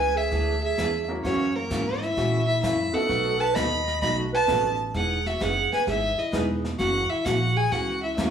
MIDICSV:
0, 0, Header, 1, 8, 480
1, 0, Start_track
1, 0, Key_signature, 4, "major"
1, 0, Tempo, 462606
1, 1287, Time_signature, 4, 2, 24, 8
1, 8616, End_track
2, 0, Start_track
2, 0, Title_t, "Fiddle"
2, 0, Program_c, 0, 110
2, 0, Note_on_c, 0, 80, 109
2, 173, Note_on_c, 0, 76, 97
2, 189, Note_off_c, 0, 80, 0
2, 652, Note_off_c, 0, 76, 0
2, 658, Note_on_c, 0, 76, 96
2, 1101, Note_off_c, 0, 76, 0
2, 1282, Note_on_c, 0, 73, 90
2, 1612, Note_on_c, 0, 70, 85
2, 1627, Note_off_c, 0, 73, 0
2, 2084, Note_on_c, 0, 76, 102
2, 2100, Note_off_c, 0, 70, 0
2, 2560, Note_off_c, 0, 76, 0
2, 2567, Note_on_c, 0, 76, 91
2, 2713, Note_off_c, 0, 76, 0
2, 2725, Note_on_c, 0, 76, 94
2, 3047, Note_on_c, 0, 78, 104
2, 3063, Note_off_c, 0, 76, 0
2, 3529, Note_on_c, 0, 81, 94
2, 3544, Note_off_c, 0, 78, 0
2, 3683, Note_on_c, 0, 83, 101
2, 3699, Note_off_c, 0, 81, 0
2, 4165, Note_off_c, 0, 83, 0
2, 4170, Note_on_c, 0, 83, 97
2, 4315, Note_off_c, 0, 83, 0
2, 4506, Note_on_c, 0, 81, 106
2, 4945, Note_off_c, 0, 81, 0
2, 5137, Note_on_c, 0, 78, 94
2, 5461, Note_on_c, 0, 76, 88
2, 5476, Note_off_c, 0, 78, 0
2, 5624, Note_on_c, 0, 78, 107
2, 5639, Note_off_c, 0, 76, 0
2, 5939, Note_off_c, 0, 78, 0
2, 5954, Note_on_c, 0, 80, 92
2, 6088, Note_off_c, 0, 80, 0
2, 6108, Note_on_c, 0, 76, 93
2, 6420, Note_on_c, 0, 75, 80
2, 6435, Note_off_c, 0, 76, 0
2, 6570, Note_off_c, 0, 75, 0
2, 7044, Note_on_c, 0, 78, 95
2, 7361, Note_on_c, 0, 76, 84
2, 7376, Note_off_c, 0, 78, 0
2, 7523, Note_on_c, 0, 78, 98
2, 7538, Note_off_c, 0, 76, 0
2, 7850, Note_on_c, 0, 80, 109
2, 7866, Note_off_c, 0, 78, 0
2, 8006, Note_on_c, 0, 78, 98
2, 8022, Note_off_c, 0, 80, 0
2, 8324, Note_off_c, 0, 78, 0
2, 8330, Note_on_c, 0, 76, 76
2, 8474, Note_off_c, 0, 76, 0
2, 8616, End_track
3, 0, Start_track
3, 0, Title_t, "Clarinet"
3, 0, Program_c, 1, 71
3, 0, Note_on_c, 1, 71, 78
3, 163, Note_on_c, 1, 68, 81
3, 179, Note_off_c, 1, 71, 0
3, 644, Note_off_c, 1, 68, 0
3, 650, Note_on_c, 1, 68, 76
3, 1097, Note_off_c, 1, 68, 0
3, 1287, Note_on_c, 1, 61, 80
3, 1605, Note_on_c, 1, 58, 74
3, 1621, Note_off_c, 1, 61, 0
3, 2089, Note_on_c, 1, 64, 84
3, 2104, Note_off_c, 1, 58, 0
3, 2557, Note_off_c, 1, 64, 0
3, 2563, Note_on_c, 1, 64, 76
3, 2705, Note_off_c, 1, 64, 0
3, 2711, Note_on_c, 1, 64, 82
3, 3046, Note_on_c, 1, 69, 90
3, 3061, Note_off_c, 1, 64, 0
3, 3529, Note_on_c, 1, 71, 90
3, 3545, Note_off_c, 1, 69, 0
3, 3682, Note_on_c, 1, 75, 84
3, 3697, Note_off_c, 1, 71, 0
3, 4164, Note_off_c, 1, 75, 0
3, 4171, Note_on_c, 1, 75, 84
3, 4316, Note_off_c, 1, 75, 0
3, 4492, Note_on_c, 1, 71, 84
3, 4937, Note_off_c, 1, 71, 0
3, 5136, Note_on_c, 1, 68, 77
3, 5461, Note_on_c, 1, 66, 70
3, 5477, Note_off_c, 1, 68, 0
3, 5628, Note_on_c, 1, 68, 78
3, 5644, Note_off_c, 1, 66, 0
3, 5938, Note_off_c, 1, 68, 0
3, 5944, Note_on_c, 1, 71, 76
3, 6082, Note_off_c, 1, 71, 0
3, 6099, Note_on_c, 1, 68, 77
3, 6415, Note_on_c, 1, 64, 67
3, 6430, Note_off_c, 1, 68, 0
3, 6568, Note_off_c, 1, 64, 0
3, 7038, Note_on_c, 1, 66, 83
3, 7368, Note_on_c, 1, 64, 77
3, 7384, Note_off_c, 1, 66, 0
3, 7528, Note_on_c, 1, 66, 87
3, 7544, Note_off_c, 1, 64, 0
3, 7848, Note_on_c, 1, 68, 81
3, 7864, Note_off_c, 1, 66, 0
3, 8013, Note_on_c, 1, 66, 84
3, 8029, Note_off_c, 1, 68, 0
3, 8329, Note_off_c, 1, 66, 0
3, 8336, Note_on_c, 1, 64, 64
3, 8477, Note_off_c, 1, 64, 0
3, 8616, End_track
4, 0, Start_track
4, 0, Title_t, "Upright piano"
4, 0, Program_c, 2, 0
4, 1124, Note_on_c, 2, 58, 64
4, 1127, Note_on_c, 2, 61, 67
4, 1130, Note_on_c, 2, 64, 58
4, 1135, Note_on_c, 2, 66, 69
4, 1136, Note_on_c, 2, 70, 77
4, 1732, Note_off_c, 2, 58, 0
4, 1733, Note_off_c, 2, 61, 0
4, 1735, Note_off_c, 2, 64, 0
4, 1737, Note_off_c, 2, 66, 0
4, 1738, Note_off_c, 2, 70, 0
4, 3040, Note_on_c, 2, 59, 76
4, 3042, Note_on_c, 2, 63, 67
4, 3046, Note_on_c, 2, 66, 60
4, 3049, Note_on_c, 2, 69, 65
4, 3054, Note_on_c, 2, 71, 72
4, 3650, Note_off_c, 2, 59, 0
4, 3650, Note_off_c, 2, 63, 0
4, 3653, Note_off_c, 2, 66, 0
4, 3654, Note_off_c, 2, 69, 0
4, 3657, Note_off_c, 2, 71, 0
4, 4636, Note_on_c, 2, 59, 63
4, 4642, Note_on_c, 2, 63, 57
4, 4642, Note_on_c, 2, 66, 58
4, 4645, Note_on_c, 2, 69, 61
4, 4649, Note_on_c, 2, 71, 71
4, 4933, Note_off_c, 2, 59, 0
4, 4936, Note_off_c, 2, 63, 0
4, 4936, Note_off_c, 2, 66, 0
4, 4938, Note_off_c, 2, 69, 0
4, 4939, Note_off_c, 2, 71, 0
4, 6559, Note_on_c, 2, 59, 67
4, 6563, Note_on_c, 2, 63, 67
4, 6566, Note_on_c, 2, 64, 59
4, 6570, Note_on_c, 2, 68, 67
4, 6570, Note_on_c, 2, 71, 81
4, 6854, Note_off_c, 2, 59, 0
4, 6856, Note_off_c, 2, 63, 0
4, 6858, Note_off_c, 2, 64, 0
4, 6860, Note_off_c, 2, 68, 0
4, 6860, Note_off_c, 2, 71, 0
4, 8476, Note_on_c, 2, 58, 61
4, 8480, Note_on_c, 2, 61, 58
4, 8482, Note_on_c, 2, 64, 53
4, 8486, Note_on_c, 2, 66, 56
4, 8490, Note_on_c, 2, 70, 75
4, 8616, Note_off_c, 2, 58, 0
4, 8616, Note_off_c, 2, 61, 0
4, 8616, Note_off_c, 2, 64, 0
4, 8616, Note_off_c, 2, 66, 0
4, 8616, Note_off_c, 2, 70, 0
4, 8616, End_track
5, 0, Start_track
5, 0, Title_t, "Steel-string acoustic guitar"
5, 0, Program_c, 3, 25
5, 325, Note_on_c, 3, 52, 52
5, 331, Note_on_c, 3, 59, 57
5, 334, Note_on_c, 3, 68, 57
5, 336, Note_on_c, 3, 62, 54
5, 563, Note_off_c, 3, 52, 0
5, 566, Note_off_c, 3, 59, 0
5, 568, Note_off_c, 3, 62, 0
5, 568, Note_off_c, 3, 68, 0
5, 808, Note_on_c, 3, 52, 75
5, 814, Note_on_c, 3, 59, 77
5, 818, Note_on_c, 3, 62, 83
5, 824, Note_on_c, 3, 68, 82
5, 932, Note_off_c, 3, 52, 0
5, 936, Note_off_c, 3, 59, 0
5, 938, Note_off_c, 3, 62, 0
5, 941, Note_off_c, 3, 68, 0
5, 1295, Note_on_c, 3, 49, 59
5, 1298, Note_on_c, 3, 52, 65
5, 1302, Note_on_c, 3, 58, 63
5, 1307, Note_on_c, 3, 61, 68
5, 1308, Note_on_c, 3, 66, 76
5, 1528, Note_off_c, 3, 49, 0
5, 1529, Note_off_c, 3, 52, 0
5, 1531, Note_off_c, 3, 58, 0
5, 1534, Note_off_c, 3, 61, 0
5, 1535, Note_off_c, 3, 66, 0
5, 1767, Note_on_c, 3, 49, 82
5, 1769, Note_on_c, 3, 52, 77
5, 1770, Note_on_c, 3, 58, 79
5, 1776, Note_on_c, 3, 61, 86
5, 1779, Note_on_c, 3, 66, 85
5, 1892, Note_off_c, 3, 49, 0
5, 1893, Note_off_c, 3, 52, 0
5, 1894, Note_off_c, 3, 58, 0
5, 1897, Note_off_c, 3, 61, 0
5, 1898, Note_off_c, 3, 66, 0
5, 2248, Note_on_c, 3, 49, 56
5, 2251, Note_on_c, 3, 58, 55
5, 2253, Note_on_c, 3, 52, 55
5, 2256, Note_on_c, 3, 61, 61
5, 2257, Note_on_c, 3, 66, 61
5, 2484, Note_off_c, 3, 49, 0
5, 2486, Note_off_c, 3, 58, 0
5, 2487, Note_off_c, 3, 52, 0
5, 2488, Note_off_c, 3, 61, 0
5, 2489, Note_off_c, 3, 66, 0
5, 2728, Note_on_c, 3, 49, 69
5, 2732, Note_on_c, 3, 52, 74
5, 2735, Note_on_c, 3, 58, 71
5, 2741, Note_on_c, 3, 61, 82
5, 2741, Note_on_c, 3, 66, 84
5, 2853, Note_off_c, 3, 49, 0
5, 2855, Note_off_c, 3, 52, 0
5, 2856, Note_off_c, 3, 58, 0
5, 2859, Note_off_c, 3, 61, 0
5, 2859, Note_off_c, 3, 66, 0
5, 3196, Note_on_c, 3, 47, 68
5, 3202, Note_on_c, 3, 54, 57
5, 3203, Note_on_c, 3, 57, 68
5, 3206, Note_on_c, 3, 63, 67
5, 3210, Note_on_c, 3, 66, 66
5, 3438, Note_off_c, 3, 47, 0
5, 3441, Note_off_c, 3, 54, 0
5, 3442, Note_off_c, 3, 57, 0
5, 3443, Note_off_c, 3, 63, 0
5, 3445, Note_off_c, 3, 66, 0
5, 3688, Note_on_c, 3, 47, 77
5, 3690, Note_on_c, 3, 54, 72
5, 3697, Note_on_c, 3, 57, 67
5, 3700, Note_on_c, 3, 63, 82
5, 3704, Note_on_c, 3, 66, 79
5, 3813, Note_off_c, 3, 47, 0
5, 3814, Note_off_c, 3, 54, 0
5, 3817, Note_off_c, 3, 57, 0
5, 3818, Note_off_c, 3, 63, 0
5, 3820, Note_off_c, 3, 66, 0
5, 4169, Note_on_c, 3, 47, 48
5, 4174, Note_on_c, 3, 54, 57
5, 4176, Note_on_c, 3, 57, 55
5, 4181, Note_on_c, 3, 63, 61
5, 4183, Note_on_c, 3, 66, 60
5, 4405, Note_off_c, 3, 47, 0
5, 4407, Note_off_c, 3, 54, 0
5, 4408, Note_off_c, 3, 57, 0
5, 4410, Note_off_c, 3, 63, 0
5, 4412, Note_off_c, 3, 66, 0
5, 4647, Note_on_c, 3, 47, 70
5, 4651, Note_on_c, 3, 54, 68
5, 4651, Note_on_c, 3, 57, 70
5, 4658, Note_on_c, 3, 63, 76
5, 4662, Note_on_c, 3, 66, 74
5, 4772, Note_off_c, 3, 47, 0
5, 4774, Note_off_c, 3, 54, 0
5, 4774, Note_off_c, 3, 57, 0
5, 4777, Note_off_c, 3, 63, 0
5, 4779, Note_off_c, 3, 66, 0
5, 5129, Note_on_c, 3, 52, 61
5, 5132, Note_on_c, 3, 59, 57
5, 5134, Note_on_c, 3, 63, 68
5, 5143, Note_on_c, 3, 68, 70
5, 5364, Note_off_c, 3, 52, 0
5, 5366, Note_off_c, 3, 59, 0
5, 5367, Note_off_c, 3, 63, 0
5, 5372, Note_off_c, 3, 68, 0
5, 5603, Note_on_c, 3, 52, 65
5, 5607, Note_on_c, 3, 59, 77
5, 5612, Note_on_c, 3, 63, 79
5, 5614, Note_on_c, 3, 68, 76
5, 5730, Note_off_c, 3, 52, 0
5, 5732, Note_off_c, 3, 59, 0
5, 5735, Note_off_c, 3, 63, 0
5, 5736, Note_off_c, 3, 68, 0
5, 6091, Note_on_c, 3, 52, 51
5, 6098, Note_on_c, 3, 59, 51
5, 6099, Note_on_c, 3, 63, 55
5, 6100, Note_on_c, 3, 68, 54
5, 6326, Note_off_c, 3, 52, 0
5, 6329, Note_off_c, 3, 59, 0
5, 6329, Note_off_c, 3, 63, 0
5, 6330, Note_off_c, 3, 68, 0
5, 6561, Note_on_c, 3, 52, 64
5, 6565, Note_on_c, 3, 59, 74
5, 6570, Note_on_c, 3, 63, 75
5, 6572, Note_on_c, 3, 68, 79
5, 6689, Note_off_c, 3, 52, 0
5, 6691, Note_off_c, 3, 59, 0
5, 6693, Note_off_c, 3, 63, 0
5, 6694, Note_off_c, 3, 68, 0
5, 7044, Note_on_c, 3, 49, 63
5, 7048, Note_on_c, 3, 52, 66
5, 7048, Note_on_c, 3, 58, 69
5, 7052, Note_on_c, 3, 61, 66
5, 7056, Note_on_c, 3, 66, 65
5, 7282, Note_off_c, 3, 49, 0
5, 7284, Note_off_c, 3, 52, 0
5, 7284, Note_off_c, 3, 58, 0
5, 7286, Note_off_c, 3, 61, 0
5, 7287, Note_off_c, 3, 66, 0
5, 7524, Note_on_c, 3, 49, 70
5, 7530, Note_on_c, 3, 52, 79
5, 7532, Note_on_c, 3, 58, 75
5, 7532, Note_on_c, 3, 61, 78
5, 7538, Note_on_c, 3, 66, 89
5, 7650, Note_off_c, 3, 49, 0
5, 7653, Note_off_c, 3, 52, 0
5, 7654, Note_off_c, 3, 58, 0
5, 7654, Note_off_c, 3, 61, 0
5, 7657, Note_off_c, 3, 66, 0
5, 8000, Note_on_c, 3, 49, 52
5, 8005, Note_on_c, 3, 52, 53
5, 8007, Note_on_c, 3, 58, 52
5, 8012, Note_on_c, 3, 61, 52
5, 8014, Note_on_c, 3, 66, 60
5, 8240, Note_off_c, 3, 49, 0
5, 8242, Note_off_c, 3, 52, 0
5, 8243, Note_off_c, 3, 58, 0
5, 8245, Note_off_c, 3, 61, 0
5, 8247, Note_off_c, 3, 66, 0
5, 8481, Note_on_c, 3, 49, 66
5, 8483, Note_on_c, 3, 52, 70
5, 8488, Note_on_c, 3, 58, 85
5, 8489, Note_on_c, 3, 61, 83
5, 8493, Note_on_c, 3, 66, 85
5, 8608, Note_off_c, 3, 49, 0
5, 8609, Note_off_c, 3, 52, 0
5, 8612, Note_off_c, 3, 58, 0
5, 8612, Note_off_c, 3, 61, 0
5, 8614, Note_off_c, 3, 66, 0
5, 8616, End_track
6, 0, Start_track
6, 0, Title_t, "Upright bass"
6, 0, Program_c, 4, 32
6, 0, Note_on_c, 4, 37, 84
6, 312, Note_off_c, 4, 37, 0
6, 327, Note_on_c, 4, 38, 85
6, 792, Note_off_c, 4, 38, 0
6, 810, Note_on_c, 4, 40, 88
6, 1274, Note_off_c, 4, 40, 0
6, 1290, Note_on_c, 4, 42, 89
6, 1754, Note_off_c, 4, 42, 0
6, 1768, Note_on_c, 4, 44, 83
6, 2233, Note_off_c, 4, 44, 0
6, 2252, Note_on_c, 4, 46, 92
6, 2714, Note_off_c, 4, 46, 0
6, 2728, Note_on_c, 4, 42, 86
6, 3029, Note_off_c, 4, 42, 0
6, 3210, Note_on_c, 4, 35, 83
6, 3674, Note_off_c, 4, 35, 0
6, 3689, Note_on_c, 4, 39, 87
6, 4153, Note_off_c, 4, 39, 0
6, 4171, Note_on_c, 4, 35, 85
6, 4634, Note_off_c, 4, 35, 0
6, 4652, Note_on_c, 4, 33, 82
6, 5114, Note_off_c, 4, 33, 0
6, 5131, Note_on_c, 4, 28, 82
6, 5594, Note_off_c, 4, 28, 0
6, 5610, Note_on_c, 4, 30, 79
6, 5910, Note_off_c, 4, 30, 0
6, 6090, Note_on_c, 4, 32, 86
6, 6390, Note_off_c, 4, 32, 0
6, 6570, Note_on_c, 4, 28, 86
6, 7033, Note_off_c, 4, 28, 0
6, 7047, Note_on_c, 4, 30, 83
6, 7348, Note_off_c, 4, 30, 0
6, 7529, Note_on_c, 4, 34, 93
6, 7992, Note_off_c, 4, 34, 0
6, 8006, Note_on_c, 4, 37, 87
6, 8471, Note_off_c, 4, 37, 0
6, 8487, Note_on_c, 4, 40, 85
6, 8616, Note_off_c, 4, 40, 0
6, 8616, End_track
7, 0, Start_track
7, 0, Title_t, "Muted upright bass strokes"
7, 3045, Note_on_c, 9, 29, 36
7, 3149, Note_off_c, 9, 29, 0
7, 5929, Note_on_c, 9, 29, 42
7, 6033, Note_off_c, 9, 29, 0
7, 6408, Note_on_c, 9, 29, 41
7, 6512, Note_off_c, 9, 29, 0
7, 7367, Note_on_c, 9, 29, 46
7, 7471, Note_off_c, 9, 29, 0
7, 8616, End_track
8, 0, Start_track
8, 0, Title_t, "Drums"
8, 329, Note_on_c, 9, 36, 22
8, 330, Note_on_c, 9, 25, 40
8, 330, Note_on_c, 9, 38, 45
8, 432, Note_off_c, 9, 36, 0
8, 433, Note_off_c, 9, 38, 0
8, 808, Note_on_c, 9, 36, 22
8, 811, Note_on_c, 9, 38, 73
8, 811, Note_on_c, 9, 44, 67
8, 912, Note_off_c, 9, 36, 0
8, 915, Note_off_c, 9, 38, 0
8, 915, Note_off_c, 9, 44, 0
8, 1290, Note_on_c, 9, 36, 28
8, 1292, Note_off_c, 9, 25, 0
8, 1292, Note_on_c, 9, 25, 52
8, 1292, Note_on_c, 9, 38, 43
8, 1394, Note_off_c, 9, 36, 0
8, 1395, Note_off_c, 9, 38, 0
8, 1770, Note_on_c, 9, 36, 21
8, 1772, Note_on_c, 9, 38, 67
8, 1772, Note_on_c, 9, 44, 68
8, 1873, Note_off_c, 9, 36, 0
8, 1876, Note_off_c, 9, 38, 0
8, 1876, Note_off_c, 9, 44, 0
8, 2100, Note_on_c, 9, 38, 41
8, 2204, Note_off_c, 9, 38, 0
8, 2250, Note_on_c, 9, 36, 19
8, 2255, Note_off_c, 9, 25, 0
8, 2255, Note_on_c, 9, 25, 44
8, 2255, Note_on_c, 9, 38, 51
8, 2354, Note_off_c, 9, 36, 0
8, 2359, Note_off_c, 9, 38, 0
8, 2730, Note_on_c, 9, 36, 23
8, 2736, Note_on_c, 9, 38, 74
8, 2736, Note_on_c, 9, 44, 76
8, 2833, Note_off_c, 9, 36, 0
8, 2840, Note_off_c, 9, 38, 0
8, 2840, Note_off_c, 9, 44, 0
8, 3210, Note_on_c, 9, 36, 28
8, 3217, Note_off_c, 9, 25, 0
8, 3217, Note_on_c, 9, 25, 44
8, 3217, Note_on_c, 9, 38, 45
8, 3314, Note_off_c, 9, 36, 0
8, 3321, Note_off_c, 9, 38, 0
8, 3690, Note_on_c, 9, 36, 22
8, 3694, Note_on_c, 9, 38, 73
8, 3694, Note_on_c, 9, 44, 65
8, 3794, Note_off_c, 9, 36, 0
8, 3798, Note_off_c, 9, 38, 0
8, 3798, Note_off_c, 9, 44, 0
8, 4021, Note_on_c, 9, 38, 41
8, 4125, Note_off_c, 9, 38, 0
8, 4170, Note_on_c, 9, 36, 18
8, 4174, Note_off_c, 9, 25, 0
8, 4174, Note_on_c, 9, 25, 53
8, 4174, Note_on_c, 9, 38, 43
8, 4274, Note_off_c, 9, 36, 0
8, 4278, Note_off_c, 9, 38, 0
8, 4650, Note_on_c, 9, 36, 30
8, 4652, Note_on_c, 9, 38, 73
8, 4652, Note_on_c, 9, 44, 68
8, 4754, Note_off_c, 9, 36, 0
8, 4756, Note_off_c, 9, 38, 0
8, 4756, Note_off_c, 9, 44, 0
8, 5130, Note_off_c, 9, 25, 0
8, 5130, Note_on_c, 9, 25, 42
8, 5130, Note_on_c, 9, 36, 21
8, 5130, Note_on_c, 9, 38, 48
8, 5234, Note_off_c, 9, 36, 0
8, 5234, Note_off_c, 9, 38, 0
8, 5458, Note_on_c, 9, 38, 45
8, 5562, Note_off_c, 9, 38, 0
8, 5611, Note_on_c, 9, 36, 25
8, 5614, Note_on_c, 9, 38, 70
8, 5614, Note_on_c, 9, 44, 58
8, 5715, Note_off_c, 9, 36, 0
8, 5718, Note_off_c, 9, 38, 0
8, 5718, Note_off_c, 9, 44, 0
8, 5940, Note_on_c, 9, 38, 39
8, 6044, Note_off_c, 9, 38, 0
8, 6091, Note_on_c, 9, 36, 19
8, 6095, Note_off_c, 9, 25, 0
8, 6095, Note_on_c, 9, 25, 54
8, 6095, Note_on_c, 9, 38, 48
8, 6195, Note_off_c, 9, 36, 0
8, 6199, Note_off_c, 9, 38, 0
8, 6569, Note_on_c, 9, 36, 26
8, 6572, Note_on_c, 9, 38, 69
8, 6572, Note_on_c, 9, 44, 61
8, 6672, Note_off_c, 9, 36, 0
8, 6676, Note_off_c, 9, 38, 0
8, 6676, Note_off_c, 9, 44, 0
8, 6895, Note_on_c, 9, 38, 42
8, 6999, Note_off_c, 9, 38, 0
8, 7048, Note_on_c, 9, 36, 19
8, 7051, Note_off_c, 9, 25, 0
8, 7051, Note_on_c, 9, 25, 46
8, 7051, Note_on_c, 9, 38, 49
8, 7151, Note_off_c, 9, 36, 0
8, 7155, Note_off_c, 9, 38, 0
8, 7528, Note_on_c, 9, 36, 29
8, 7529, Note_on_c, 9, 38, 71
8, 7529, Note_on_c, 9, 44, 75
8, 7631, Note_off_c, 9, 36, 0
8, 7632, Note_off_c, 9, 38, 0
8, 7632, Note_off_c, 9, 44, 0
8, 8007, Note_on_c, 9, 36, 21
8, 8009, Note_off_c, 9, 25, 0
8, 8009, Note_on_c, 9, 25, 48
8, 8009, Note_on_c, 9, 38, 44
8, 8110, Note_off_c, 9, 36, 0
8, 8112, Note_off_c, 9, 38, 0
8, 8485, Note_on_c, 9, 36, 22
8, 8486, Note_on_c, 9, 38, 73
8, 8486, Note_on_c, 9, 44, 69
8, 8589, Note_off_c, 9, 36, 0
8, 8590, Note_off_c, 9, 38, 0
8, 8590, Note_off_c, 9, 44, 0
8, 8616, Note_off_c, 9, 25, 0
8, 8616, End_track
0, 0, End_of_file